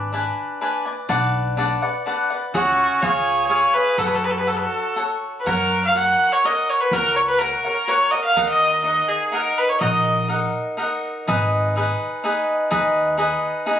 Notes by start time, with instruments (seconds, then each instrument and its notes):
Already playing: upright bass G#1, cavaquinho D4 B4 D5 G#5
0.13 cavaquinho D4 B4 D5 G#5
0.61 cavaquinho D4 B4 D5 G#5
0.86 cavaquinho B4 D5 G#5
1.09 upright bass B1, cavaquinho D4 B4 D5 F#5
1.57 cavaquinho D4 B4 D5 F#5
1.82 cavaquinho B4 D5 F#5
2.06 cavaquinho D4 B4 D5 F#5
2.30 cavaquinho B4 D5 F#5
2.54 upright bass C#2, trumpet C#4, cavaquinho F#4 G#4 C#5 F#5, violin F#4
3.01 upright bass C#2, cavaquinho F4 G#4 C#5 F5, trumpet G#4, violin C#5
3.47 cavaquinho F4 G#4 C#5 F5, trumpet G#4, violin C#5
3.74 trumpet G#4, cavaquinho G#4 C#5 F5, violin B4
3.98 upright bass F#2, trumpet F#4, cavaquinho F#4 A4 C#5 F#5, violin A4
4.06 trumpet G#4, violin B4
4.14 trumpet F#4, violin A4
4.24 trumpet G#4, violin B4
4.31 trumpet F#4, violin A4
4.38 trumpet G#4, violin B4
4.45 trumpet F#4, cavaquinho F#4 A4 C#5 F#5, violin A4
4.55 trumpet G#4, violin B4
4.61 trumpet F#4, violin A4
4.96 cavaquinho F#4 A4 C#5 F#5
5.40 violin B4
5.46 upright bass F#2, cavaquinho F#4 A#4 C#5 F#5, violin A#4
5.85 violin F5
5.95 cavaquinho F#4 A#4 C#5 F#5, violin F#5
6.32 violin C#5
6.44 cavaquinho F#4 A#4 C#5 F#5, violin D#5
6.70 violin C#5
6.81 violin B4
6.91 upright bass C#2, cavaquinho F#4 A#4 C#5 F#5, violin A#4
7.16 violin C#5
7.28 violin B4
7.39 cavaquinho F#4 A#4 C#5 F#5, violin A#4
7.65 cavaquinho A#4 C#5 F#5
7.87 cavaquinho F#4 A#4 C#5 F#5, violin C#5
8.11 cavaquinho A#4 C#5 F#5, violin D#5
8.25 violin F5
8.36 upright bass D#2, cavaquinho D#4 A#4 D#5 F#5
8.49 violin D#5
8.84 cavaquinho D#4 A#4 D#5 F#5, violin D#5
9.08 violin G#4
9.31 cavaquinho D#4 A#4 D#5 F#5, violin A#4
9.58 violin B4
9.69 violin C#5
9.80 upright bass A#1, cavaquinho D#4 A#4 D#5 F#5, violin D#5
10.28 cavaquinho D#4 A#4 D#5 F#5
10.77 cavaquinho D#4 A#4 D#5 F#5
11.28 upright bass G#1, cavaquinho D#4 G#4 B4 D#5
11.76 cavaquinho D#4 G#4 B4 D#5
12.24 cavaquinho D#4 G#4 B4 D#5
12.70 upright bass D#2, cavaquinho D#4 G#4 B4 D#5
13.17 cavaquinho D#4 G#4 B4 D#5
13.66 cavaquinho D#4 G#4 B4 D#5